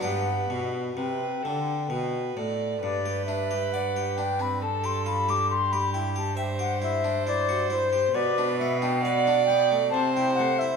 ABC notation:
X:1
M:3/4
L:1/16
Q:1/4=67
K:G
V:1 name="Flute"
f3 z g6 z2 | d2 e2 f2 g b a c' b d' | c' b g a g f e2 d2 c2 | d2 e g f2 g2 a g f e |]
V:2 name="Violin"
B4 B2 A2 B2 d2 | B8 A4 | G4 c8 | B4 d4 c4 |]
V:3 name="Harpsichord"
[B,DG]12 | z G D G d G D C z G =F G | z G E G e G E D E F E G | z D B, D B D B, A, z E A, E |]
V:4 name="Harpsichord" clef=bass
G,,2 B,,2 C,2 D,2 B,,2 A,,2 | G,,12- | G,,12 | B,,8 C,4 |]
V:5 name="Cello" clef=bass
G,,2 B,,2 C,2 D,2 B,,2 A,,2 | G,,12- | G,,12 | B,,8 C,4 |]